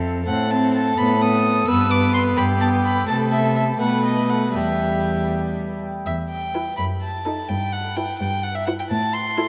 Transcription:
0.00 0.18 F2 medium
0.00 0.25 C4 soft
0.00 0.23 A4 soft
0.26 0.89 A2 medium
0.26 0.49 C4 soft
0.26 1.69 A4 medium
0.26 0.52 F#5 medium
0.50 0.96 C4 soft
0.50 0.73 A5 medium
0.74 0.99 A5 medium
0.97 1.59 A2 medium
0.97 1.20 B3 medium
0.97 1.22 B5 medium
1.20 1.66 B3 soft
1.20 1.67 D#6 medium
1.68 2.29 G2 medium
1.68 1.89 B3 medium
1.68 2.38 B4 medium
1.68 1.92 E6 medium
1.90 2.58 B3 soft
1.90 2.13 D6 medium
2.14 2.22 C6 medium
2.37 2.99 G2 medium
2.37 3.07 G4 medium
2.37 2.45 B5 medium
2.60 3.07 B3 soft
2.60 2.68 A5 medium
2.84 3.07 B5 medium
3.07 3.77 C3 soft
3.07 3.77 A3 medium
3.07 3.79 A4 medium
3.07 3.15 A5 medium
3.31 3.55 E5 medium
3.56 3.64 E5 medium
3.80 4.56 B2 soft
3.80 4.53 A3 soft
3.80 4.56 B4 soft
3.80 4.04 F#5 medium
4.05 4.31 D#5 medium
4.30 4.53 F#5 soft
4.54 5.86 E2 soft
4.54 5.83 G3 soft
4.54 5.69 G4 soft
4.54 5.29 E5 medium
6.06 6.64 E2 soft
6.06 6.14 E5 medium
6.30 6.76 G5 medium
6.55 6.72 E4 soft
6.55 6.72 B4 soft
6.77 7.35 F#2 medium
6.77 6.85 B5 medium
7.02 7.50 A5 soft
7.25 7.44 D#4 soft
7.25 7.43 A4 soft
7.48 8.06 G2 medium
7.48 7.74 G5 medium
7.72 7.97 F#5 medium
7.96 8.14 E4 soft
7.96 8.14 B4 soft
7.96 8.18 G5 medium
8.19 8.76 G2 medium
8.19 8.45 G5 medium
8.43 8.56 F#5 medium
8.55 8.66 E5 medium
8.66 8.85 E4 soft
8.66 8.85 B4 soft
8.66 8.71 F#5 medium
8.79 8.84 G5 medium
8.90 9.47 A2 medium
8.90 9.15 A5 medium
9.13 9.48 C6 medium
9.37 9.48 E4 medium
9.37 9.48 A4 medium

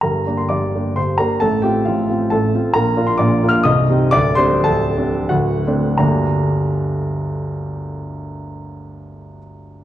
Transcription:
0.01 0.26 G1 soft
0.01 0.26 G2 soft
0.01 0.36 A#4 soft
0.01 0.38 A#5 medium
0.26 0.48 A#3 soft
0.26 0.49 D4 soft
0.26 0.49 G4 soft
0.37 0.50 C6 medium
0.49 0.74 G1 soft
0.49 0.74 G2 soft
0.49 0.94 D5 soft
0.49 0.96 D6 medium
0.75 0.95 A#3 soft
0.75 0.96 D4 soft
0.75 0.96 G4 soft
0.96 1.19 G1 soft
0.96 1.19 G2 soft
0.96 1.18 C5 soft
0.96 1.19 C6 medium
1.18 1.39 A#3 soft
1.18 1.39 D4 soft
1.18 1.39 G4 soft
1.18 1.39 A#4 soft
1.18 1.40 A#5 medium
1.40 1.63 A1 soft
1.40 1.63 A2 soft
1.40 1.62 A4 medium
1.40 1.63 A5 medium
1.62 1.84 C4 soft
1.62 1.84 F4 soft
1.62 1.84 G4 soft
1.62 1.85 G5 medium
1.85 2.09 A1 soft
1.85 2.09 A2 soft
1.85 2.09 F4 soft
1.85 2.31 F5 medium
2.10 2.30 C4 soft
2.10 2.30 F4 soft
2.30 2.53 A1 soft
2.30 2.53 A2 soft
2.30 2.72 A4 medium
2.30 2.74 A5 medium
2.55 2.73 C4 soft
2.55 2.73 F4 soft
2.73 2.96 A#1 medium
2.73 2.96 A#2 medium
2.73 3.05 A#4 medium
2.73 3.07 A#5 medium
2.97 3.17 A#3 soft
2.97 3.17 D4 soft
2.97 3.17 F4 soft
3.07 3.19 C6 medium
3.18 3.42 A#1 soft
3.18 3.42 A#2 medium
3.18 3.48 D5 medium
3.18 3.50 D6 medium
3.43 3.64 A#3 soft
3.43 3.64 D4 soft
3.43 3.64 F4 soft
3.49 3.65 F5 medium
3.49 3.65 F6 medium
3.63 3.88 C1 medium
3.63 3.88 C2 medium
3.63 4.09 D#5 medium
3.63 4.12 D#6 medium
3.90 4.11 G3 medium
3.90 4.11 C4 soft
3.90 4.11 D#4 medium
4.11 4.37 D1 medium
4.11 4.37 D2 medium
4.11 4.36 D5 medium
4.11 4.37 D6 loud
4.35 4.62 G3 medium
4.35 4.63 C4 soft
4.35 4.63 D4 medium
4.35 4.63 C5 medium
4.35 4.64 C6 medium
4.64 4.96 D1 medium
4.64 4.96 D2 medium
4.64 5.26 A4 medium
4.64 5.29 A5 medium
4.97 5.27 G3 soft
4.97 5.27 C4 soft
4.97 5.27 D4 medium
5.29 5.65 D1 medium
5.29 5.65 D2 medium
5.29 5.95 F#4 medium
5.29 5.99 F#5 medium
5.67 5.97 A3 soft
5.67 5.97 C4 soft
5.67 5.97 D4 medium
5.98 9.38 G1 medium
5.98 9.38 D2 medium
5.98 9.38 G3 soft
5.98 9.38 A#3 medium
5.98 9.38 D4 soft
5.98 9.38 G4 soft
5.98 9.37 A#5 medium

